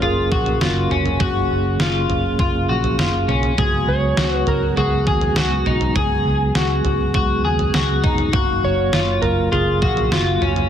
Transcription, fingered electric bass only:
0.02 0.28 F#1 medium
0.32 0.58 A#1 medium
0.61 0.87 F#1 medium
0.91 1.17 F1 medium
1.21 1.47 F#1 medium
1.51 1.77 F#1 medium
1.80 2.06 F#1 medium
2.09 2.36 F#1 medium
2.39 2.65 F#1 medium
2.68 2.95 A#1 medium
2.98 3.25 F#1 medium
3.28 3.54 B1 medium
3.58 3.84 C#2 medium
3.87 4.14 C#2 medium
4.17 4.44 C#2 medium
4.47 4.73 C#2 medium
4.77 5.03 C#2 loud
5.07 5.33 D#2 medium
5.37 5.63 C#2 medium
5.66 5.92 B1 medium
5.96 6.22 C#2 medium
6.25 6.51 C#2 medium
6.55 6.81 C#2 medium
6.85 7.11 C#2 medium
7.14 7.44 C#2 medium
7.44 7.70 D#2 medium
7.74 8.00 C#2 medium
8.04 8.30 F1 medium
8.34 8.60 F#1 medium
8.63 8.89 F#1 medium
8.93 9.19 F#1 medium
9.22 9.49 F#1 medium
9.52 9.78 F#1 medium
9.82 10.08 A#1 medium
10.11 10.38 F#1 medium
10.41 10.67 F1 medium

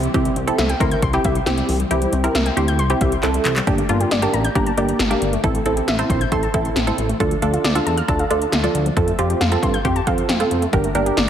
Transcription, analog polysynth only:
0.14 0.37 C4 medium
0.14 0.37 E4 medium
0.14 0.37 G4 loud
0.47 0.70 C4 medium
0.47 0.70 E4 medium
0.47 0.70 A4 loud
0.80 1.03 C4 medium
0.80 1.03 E4 medium
0.80 1.03 A#4 medium
1.14 1.36 C4 medium
1.14 1.36 E4 medium
1.14 1.36 G4 loud
1.47 1.77 C4 medium
1.47 1.77 E4 medium
1.47 1.77 G4 medium
1.91 2.14 C4 medium
1.91 2.14 E4 medium
1.91 2.14 G4 medium
2.24 2.47 C4 medium
2.24 2.47 E4 medium
2.24 2.47 A#4 medium
2.57 2.80 C4 medium
2.57 2.80 E4 medium
2.57 2.80 G4 medium
2.90 3.13 C4 medium
2.90 3.13 E4 medium
2.90 3.13 G4 loud
3.23 3.53 C4 medium
3.23 3.53 E4 medium
3.23 3.53 A4 medium
3.67 3.82 A#3 medium
3.67 3.82 D4 medium
3.67 3.82 G4 medium
3.89 4.12 A#3 medium
3.89 4.12 D4 medium
3.89 4.12 F4 loud
4.22 4.45 A#3 medium
4.22 4.45 D4 medium
4.22 4.45 G4 medium
4.55 4.71 A#3 medium
4.55 4.71 D4 medium
4.55 4.71 G4 medium
4.77 5.00 A#3 medium
4.77 5.00 D4 medium
4.77 5.00 G4 medium
5.10 5.33 A#3 medium
5.10 5.33 D4 medium
5.10 5.33 G4 loud
5.44 5.59 C4 medium
5.44 5.59 E4 medium
5.44 5.59 A4 loud
5.66 5.89 C4 medium
5.66 5.89 E4 medium
5.66 5.89 A4 loud
5.99 6.22 C4 medium
5.99 6.22 E4 medium
5.99 6.22 C5 loud
6.32 6.47 C4 medium
6.32 6.47 E4 medium
6.32 6.47 A4 loud
6.54 6.77 C4 medium
6.54 6.77 E4 medium
6.54 6.77 A4 medium
6.87 7.10 C4 medium
6.87 7.10 E4 medium
6.87 7.10 A4 loud
7.20 7.35 D4 medium
7.20 7.35 F4 medium
7.20 7.35 A4 medium
7.42 7.65 D4 medium
7.42 7.65 F4 medium
7.42 7.65 A4 loud
7.75 7.98 D4 medium
7.75 7.98 F4 medium
7.75 7.98 A4 medium
8.08 8.24 D4 medium
8.08 8.24 F4 medium
8.08 8.24 A4 loud
8.30 8.53 D4 medium
8.30 8.53 F4 medium
8.30 8.53 A4 loud
8.63 8.86 D4 medium
8.63 8.86 F4 medium
8.63 8.86 A4 medium
8.97 9.12 C4 medium
8.97 9.12 F4 medium
8.97 9.12 A4 medium
9.19 9.42 C4 medium
9.19 9.42 F4 medium
9.19 9.42 G4 loud
9.52 9.75 C4 medium
9.52 9.75 F4 medium
9.52 9.75 A4 medium
9.85 10.00 C4 medium
9.85 10.00 F4 medium
9.85 10.00 G4 loud
10.07 10.30 C4 medium
10.07 10.30 F4 medium
10.07 10.30 A4 medium
10.40 10.63 C4 medium
10.40 10.63 F4 medium
10.40 10.63 A4 medium
10.73 10.88 D4 medium
10.73 10.88 G4 medium
10.73 10.88 A#4 medium
10.95 11.18 D4 medium
10.95 11.18 G4 medium
10.95 11.18 A#4 loud

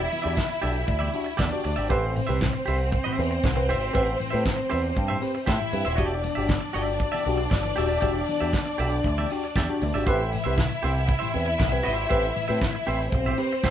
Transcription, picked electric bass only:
0.26 0.35 E2 loud
0.64 0.83 B1 loud
0.88 1.08 D2 medium
1.39 1.49 E2 loud
1.65 1.75 D2 medium
1.78 1.88 G#1 medium
1.91 2.20 A1 loud
2.29 2.48 C2 medium
2.68 2.97 C2 medium
3.19 3.38 E2 loud
3.44 3.72 C2 medium
3.71 3.89 G#1 medium
3.95 4.14 A1 loud
4.34 4.43 A2 loud
4.73 4.92 E2 medium
4.97 5.16 G2 medium
5.48 5.57 A2 medium
5.73 5.83 G2 medium
5.86 5.96 D#1 medium
5.99 6.28 E1 loud
6.37 6.57 G1 medium
6.76 7.05 G1 medium
7.26 7.46 B1 medium
7.52 7.71 G1 medium
7.78 7.97 D#1 medium
8.03 8.22 E1 loud
8.42 8.51 E2 loud
8.80 8.99 B1 loud
9.05 9.24 D2 medium
9.56 9.66 E2 medium
9.82 9.91 D2 medium
9.95 10.04 G#1 loud
10.07 10.36 A1 loud
10.46 10.65 C2 medium
10.84 11.13 C2 loud
11.36 11.55 E2 loud
11.60 11.79 C2 medium
11.87 12.06 G#1 medium
12.11 12.30 A1 loud
12.50 12.59 A2 medium
12.88 13.07 A1 medium
13.13 13.32 B1 medium
13.64 13.70 C2 medium

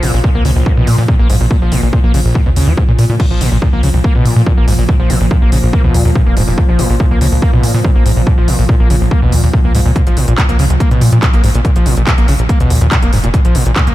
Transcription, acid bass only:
0.03 0.12 A#2 medium
0.14 0.19 A#2 medium
0.24 0.30 A#2 loud
0.35 0.43 A#3 medium
0.45 0.51 C#3 medium
0.56 0.68 A#1 medium
0.66 0.72 A#2 medium
0.77 0.89 B2 loud
0.87 0.96 A#2 medium
0.98 1.04 A#2 medium
1.08 1.15 A#2 loud
1.19 1.28 A#3 medium
1.30 1.36 G#2 loud
1.41 1.46 A#2 medium
1.51 1.57 A#2 medium
1.62 1.73 F3 medium
1.72 1.81 A#2 medium
1.83 1.88 A#2 medium
1.93 1.99 A#2 loud
2.04 2.12 A#3 medium
2.14 2.20 C#3 medium
2.25 2.37 A#1 medium
2.35 2.41 A#2 medium
2.46 2.50 B2 loud
2.56 2.69 C#3 medium
2.67 2.73 F3 medium
2.78 2.84 G#2 medium
2.89 2.92 A#2 medium
2.99 3.05 A#2 loud
3.10 3.15 A#2 medium
3.20 3.26 A#2 medium
3.31 3.42 F3 medium
3.41 3.50 A#2 medium
3.52 3.57 A#2 medium
3.62 3.68 A#2 loud
3.73 3.81 A#3 medium
3.83 3.89 C#3 medium
3.94 4.00 A#1 medium
4.04 4.13 A#3 loud
4.15 4.27 B2 loud
4.25 4.34 A#2 medium
4.36 4.42 A#2 medium
4.46 4.52 A#2 loud
4.57 4.66 A#3 medium
4.68 4.74 G#2 loud
4.78 4.84 A#2 medium
4.89 4.95 A#2 medium
5.00 5.11 F3 medium
5.10 5.19 A#2 medium
5.21 5.26 A#2 medium
5.31 5.37 A#2 loud
5.42 5.50 A#3 medium
5.52 5.58 C#3 medium
5.63 5.69 A#1 medium
5.73 5.82 A#3 loud
5.84 5.96 B2 loud
5.94 6.03 A#2 medium
6.05 6.11 A#2 medium
6.15 6.22 A#2 loud
6.26 6.35 A#3 medium
6.37 6.43 G#2 loud
6.48 6.53 A#2 medium
6.58 6.64 A#2 medium
6.69 6.80 F3 medium
6.79 6.88 A#2 medium
6.90 6.95 A#2 medium
7.00 7.06 A#2 loud
7.11 7.19 A#3 medium
7.21 7.27 C#3 medium
7.32 7.38 A#1 medium
7.42 7.51 A#3 loud
7.53 7.65 B2 loud
7.63 7.72 A#2 medium
7.74 7.80 A#2 medium
7.84 7.91 A#2 loud
7.95 8.04 A#3 medium
8.06 8.12 G#2 loud
8.17 8.22 A#2 medium
8.27 8.33 A#2 medium
8.38 8.49 F3 medium
8.48 8.57 A#2 medium
8.59 8.64 A#2 medium
8.69 8.75 A#2 loud
8.80 8.88 A#3 medium
8.90 8.96 C#3 medium
9.01 9.07 A#1 medium
9.11 9.20 A#3 loud
9.22 9.34 B2 loud
9.33 9.42 A#2 medium
9.43 9.49 A#2 medium
9.54 9.60 A#2 loud
9.65 9.73 A#3 medium
9.75 9.81 G#2 loud
9.86 9.91 A#2 medium
9.96 10.02 A#2 medium
10.07 10.18 F3 medium
10.17 10.26 A#2 medium
10.28 10.34 A#2 medium
10.38 10.44 A#2 loud
10.49 10.57 A#3 medium
10.59 10.65 C#3 medium
10.70 10.76 A#1 medium
10.80 10.89 A#3 loud
10.91 11.03 B2 loud
11.02 11.11 A#2 medium
11.13 11.18 A#2 medium
11.23 11.29 A#2 loud
11.34 11.42 A#3 medium
11.44 11.50 G#2 loud
11.55 11.60 A#2 medium
11.65 11.71 A#2 medium
11.76 11.88 F3 medium
11.86 11.95 A#2 medium
11.97 12.03 A#2 medium
12.07 12.13 A#2 loud
12.18 12.26 A#3 medium
12.28 12.34 C#3 medium
12.39 12.45 A#1 medium
12.49 12.58 A#3 loud
12.60 12.72 B2 loud
12.70 12.80 A#2 medium
12.81 12.87 A#2 medium
12.92 12.98 A#2 loud
13.03 13.11 A#3 medium
13.13 13.19 G#2 loud
13.24 13.29 A#2 medium
13.34 13.40 A#2 medium
13.45 13.57 F3 medium
13.55 13.64 A#2 medium
13.66 13.72 A#2 medium
13.76 13.82 A#2 loud
13.87 13.95 A#3 medium

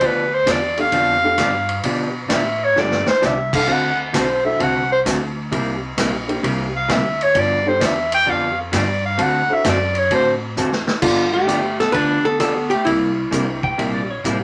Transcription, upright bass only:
0.01 0.46 D2 medium
0.47 0.91 E2 medium
0.92 1.37 F2 medium
1.38 1.83 G2 medium
1.84 2.29 B2 medium
2.29 2.74 A2 medium
2.77 3.06 G2 medium
3.08 muted upright bass stroke soft
3.22 3.67 C2 loud
3.68 4.13 D2 medium
4.14 4.58 B1 medium
4.60 5.04 C2 medium
5.06 5.50 D2 medium
5.52 5.96 C2 medium
5.97 6.42 A#1 medium
6.43 6.88 C2 medium
6.89 7.34 D2 medium
7.35 7.80 G2 medium
7.81 8.26 E2 medium
8.27 8.71 F2 medium
8.72 9.17 G2 loud
9.18 9.47 D2 medium
9.50 muted upright bass stroke soft
9.65 10.09 F#2 loud
10.11 10.55 A2 medium
10.56 10.85 E2 medium
10.88 muted upright bass stroke soft
11.02 11.76 G1 medium
11.94 12.68 D2 medium
12.86 13.23 C2 medium
13.32 13.71 C2 medium
13.79 14.18 A#1 medium
14.24 14.44 A1 medium

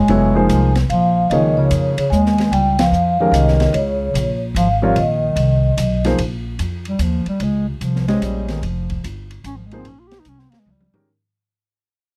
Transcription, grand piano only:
0.09 0.33 F#3 medium
0.09 0.33 B3 medium
0.09 0.33 E4 medium
0.09 0.33 A4 medium
0.09 0.33 C#5 medium
0.35 0.70 F3 medium
0.35 0.71 A#3 medium
0.35 0.70 D#4 medium
0.35 0.71 G#4 medium
0.35 0.71 C5 medium
1.32 1.93 F3 medium
1.32 1.93 A#3 medium
1.32 1.93 D#4 medium
1.32 1.93 G#4 medium
1.32 1.94 C#5 medium
3.20 3.72 D#3 medium
3.20 3.72 G#3 medium
3.20 3.72 C#4 medium
3.20 3.72 G4 medium
3.20 3.72 A#4 medium
4.82 4.95 G3 medium
4.82 4.95 C4 medium
4.82 4.95 F4 medium
4.82 4.96 A#4 medium
4.82 4.96 C#5 medium
6.05 6.18 F3 medium
6.05 6.18 A#3 medium
6.05 6.18 D#4 medium
6.05 6.18 G#4 medium
6.05 6.18 C5 medium
8.08 8.60 G#3 medium
8.08 8.60 C#4 medium
8.08 8.60 G4 medium
8.08 8.61 C5 medium
8.08 8.61 D#5 medium
9.73 9.84 F3 medium
9.73 9.85 A#3 medium
9.73 9.85 D#4 medium
9.73 9.85 G#4 medium
9.73 9.85 C5 medium
10.94 11.06 D#3 medium
10.94 11.06 G#3 medium
10.94 11.06 C#4 medium
10.94 11.06 G4 medium
10.94 11.07 A#4 medium

